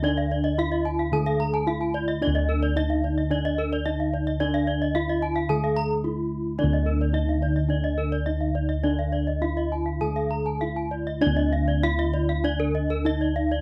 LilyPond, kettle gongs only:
<<
  \new Staff \with { instrumentName = "Kettle gongs" } { \time 4/4 \tempo 4 = 110 << { r4 ees'8 r4. ees'8 r8 | r2. ees'8 r8 | r4 ees'8 r4. ees'8 r8 | r4 ees'8 r4. ees'8 r8 |
r4 ees'8 r4. ees'8 r8 | r4 ees'8 r4. ees'8 r8 | } \\ { d'2. r4 | d'2. r4 | d'2. r4 | d'2. r4 |
d'2. r4 | d'2. r4 | } >> }
  \new Staff \with { instrumentName = "Kettle gongs" } { \clef bass \time 4/4 << { r2 d2~ | d4 r2. | r2 d2~ | d4 r2. |
r2 d2~ | d4 r2. | } \\ { d,2 r2 | d,1~ | d,2 r2 | d,1~ |
d,2 r2 | d,1 | } >> }
>>